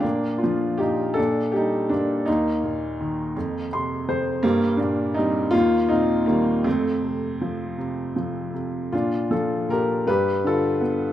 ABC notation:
X:1
M:6/8
L:1/8
Q:3/8=53
K:Bb
V:1 name="Upright piano"
[B,D] [DF] [EG] [DA] [EG] [B,D] | [B,E]4 c' c | [G,B,] [B,D] [CE] [B,F] [CE] [G,B,] | [A,C]4 z2 |
[DF] [FA] [GB] [G=B] [FA] z |]
V:2 name="Upright piano" clef=bass
B,, F, B,, B,, G, B,, | E,, B,, E, F,, C, F,, | G,, B,, G, E,, B,, E, | F,, C, F, C, F, C, |
B,, F, B,, G,, D, =B, |]